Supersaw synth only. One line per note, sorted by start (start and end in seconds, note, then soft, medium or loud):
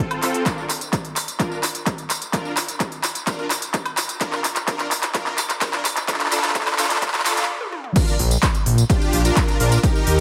0.00 0.20 C4 medium
0.00 0.20 F4 medium
0.00 0.20 A4 medium
0.22 0.43 C4 medium
0.22 0.43 F4 medium
0.22 0.43 A4 loud
0.46 0.64 D4 medium
0.46 0.64 F4 medium
0.46 0.64 A#4 medium
1.40 1.58 D4 medium
1.40 1.58 F4 medium
1.40 1.58 A#4 medium
2.33 2.52 D4 medium
2.33 2.52 F4 medium
2.33 2.52 A#4 medium
3.27 3.46 D4 medium
3.27 3.46 F4 medium
3.27 3.46 A#4 medium
4.21 4.39 D4 medium
4.21 4.39 F4 medium
4.21 4.39 A#4 medium
4.68 4.86 D4 medium
4.68 4.86 F4 medium
4.68 4.86 A#4 medium
5.15 5.33 D4 medium
5.15 5.33 F4 medium
5.15 5.33 A#4 medium
5.62 5.80 D4 medium
5.62 5.80 F4 medium
5.62 5.80 A#4 medium
6.08 6.27 D4 medium
6.08 6.27 F4 medium
6.08 6.27 A4 medium
6.32 6.50 D4 medium
6.32 6.50 F4 medium
6.32 6.50 A4 medium
6.55 6.74 A4 medium
6.79 6.97 D4 medium
6.79 6.97 F4 medium
6.79 6.97 A4 medium
7.02 7.21 D4 medium
7.02 7.21 F4 medium
7.02 7.21 A4 medium
7.26 7.44 D4 medium
7.26 7.44 F4 medium
7.26 7.44 A4 medium
7.96 8.14 D4 medium
7.96 8.14 F4 medium
7.96 8.14 A#4 medium
8.90 9.22 D4 medium
8.90 9.22 F4 medium
8.90 9.22 G4 loud
9.25 9.57 D4 medium
9.25 9.57 F4 medium
9.25 9.57 A#4 medium
9.60 9.79 D4 medium
9.60 9.79 F4 medium
9.60 9.79 A#4 medium
9.84 10.20 D#4 medium
9.84 10.20 G4 medium
9.84 10.20 A#4 medium